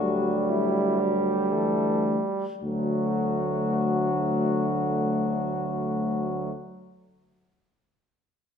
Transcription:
Already playing: D2 F#3 G3 F#4
0.01 G3
0.50 E4
0.99 G4
1.52 E3 A3 A4
2.62 D2 D3 F#3 A3 F#4

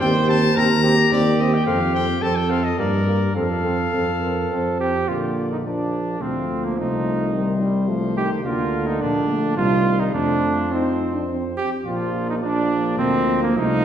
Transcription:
0.00 D#2 C4 G4 C5 G5
0.28 C4 G4 A5
0.55 D#2 C4 G4 A#4 A#5
0.83 C4 G4
1.11 D#2 C4 G4 D5
1.39 C4 G4 D#5
1.54 G5
1.66 F2 C4 A4 F5
1.94 C4 A4 G5
2.22 F2 C4 A4 A5
2.35 G5
2.50 C4 A4 F5
2.64 D#5
2.78 G2 A#3 G4 A#4 D5
3.07 A#3 G4
3.35 F2 C4 A4 F5
3.64 C4 A4
3.93 F2 C4 A4
4.22 C4 A#4
4.50 F2 C4 C5
4.80 C4 G4
5.08 A#1 D3 A#3 F4 D5
5.51 D#4
5.65 F3 A#3 D4 D5
6.20 D2 F3 A3 C4 F5
6.64 A#3
6.77 C2 A3 D#4 C5
7.33 D#3 G3 C5
7.61 G3
7.89 F3 A3
8.17 D#3 G4
8.44 D2 D3 A#3 F4 A#4
8.87 D#4
9.00 A#1 A#3 D4 D5
9.28 A3
9.56 C2 D#3 G3 F4 C5
10.00 D#4
10.13 F2 F3 A3 D4 C5
10.71 C4 D#4
11.14 D4
11.29 C4
11.57 G4
11.85 A#1 F3 A#3 F4 D5
12.29 D#4
12.42 F3 A#3 D4 D5
12.98 D2 C4 D#5
13.43 A#3
13.56 C2 F3 A3 D#4 F5

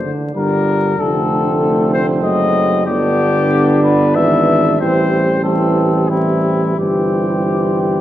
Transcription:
Already playing: C5
0.04 D3
0.35 G1 D3 G3 D4 A#4
0.98 F1 D3 A3 C4 A4
1.93 C5
2.23 F#1 F#3 D#5
2.86 G1 D3 B3 D4 G4
3.82 B4
4.15 G#1 E3 E5
4.79 A1 E3 G3 C4 C5
5.44 E3 G3 C4 A4
6.09 E3 G3 C4 E4
6.77 G1 E3 G3 C4 G4

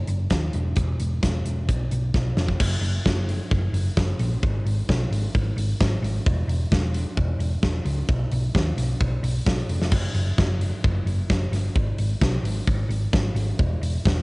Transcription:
0.08 F#1, closed hi-hat
0.30 D#2, kick, snare, closed hi-hat
0.53 E1, closed hi-hat
0.76 E1, kick, closed hi-hat
1.00 E1, closed hi-hat
1.23 E1, kick, snare, closed hi-hat
1.45 E1, closed hi-hat
1.69 B1, kick, closed hi-hat
1.91 B1, closed hi-hat
2.14 B1, kick, snare
2.37 F1, snare
2.48 kick
2.60 F#1, kick, crash
2.81 F#1, open hi-hat
3.05 F#1, kick, snare
3.29 open hi-hat
3.51 F#1, kick
3.73 F#1, open hi-hat
3.97 F#1, kick, snare
4.19 A#1, open hi-hat
4.43 G#1, kick
4.65 G#1, open hi-hat
4.89 B1, kick, snare
5.11 G#1, open hi-hat
5.35 G#1, kick
5.56 G#1, open hi-hat
5.81 G#1, kick, snare
6.02 G#1, open hi-hat
6.26 E1, kick
6.48 E1, open hi-hat
6.72 E1, kick, snare
6.94 open hi-hat
7.17 E1, kick
7.39 E1, open hi-hat
7.63 E1, kick, snare
7.85 C#2, open hi-hat
8.09 B1, kick
8.32 B1, open hi-hat
8.55 D#2, kick, snare
8.77 B1, open hi-hat
9.00 B1, kick
9.23 B1, open hi-hat
9.46 B1, kick, snare
9.69 F1, open hi-hat
9.82 snare
9.91 F#1, kick, crash
10.14 F#1, open hi-hat
10.38 F#1, kick, snare
10.61 open hi-hat
10.84 F#1, kick
11.06 F#1, open hi-hat
11.30 F#1, kick, snare
11.52 G1, snare, open hi-hat
11.75 G#1, kick
11.98 G#1, open hi-hat
12.21 B1, kick, snare
12.43 G#1, open hi-hat
12.67 G#1, kick
12.89 G#1, open hi-hat
13.13 G#1, kick, snare
13.35 G#1, open hi-hat
13.59 E1, kick
13.81 E1, open hi-hat
14.05 E1, kick, snare

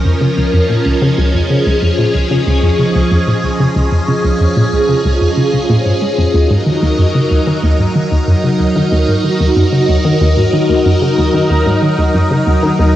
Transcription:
Already playing: F3 C#4 D#4 A#4 D#5
0.05 F2
0.21 C#3
0.37 C#2
0.53 F2
0.70 A#2
0.86 C#2
1.02 C#3
1.18 C#2 G#4
1.34 F2
1.50 C#3
1.66 C#2
1.82 F2
1.99 A#2
2.15 C#2
2.31 C#3
2.47 C#2
2.63 F2
2.79 C#3
2.95 C#2
3.12 F2
3.28 A#2
3.44 C#2
3.60 C#3
3.76 C#2
3.92 F2
4.08 C#3
4.24 C#2
4.41 F2
4.57 A#2
4.73 C#2
4.89 C#3
5.05 C#2
5.21 F2
5.37 C#3
5.53 C#3
5.70 A#2
5.86 G#2
6.02 G#3
6.18 F2
6.34 D#2 F#3 D#4 A#4
6.50 G#2
6.66 D#3
6.82 D#2
6.99 F#2
7.15 C#3
7.31 D#2
7.47 D#3
7.63 D#2
7.79 G#2
7.96 D#3
8.12 D#2
8.28 F#2
8.44 C#3
8.60 D#2
8.76 D#3
8.92 D#2
9.08 G#2
9.24 D#3
9.40 D#2
9.57 F#2
9.73 C#3
9.89 D#2
10.05 D#3
10.21 D#2
10.37 G#2
10.53 D#3
10.69 D#2
10.86 F#2
11.02 C#3
11.18 D#2
11.34 D#3
11.50 D#2
11.66 G#2
11.82 D#3
11.99 D#2
12.15 F#2
12.31 C#3
12.47 D#2
12.63 D#3
12.79 D#2

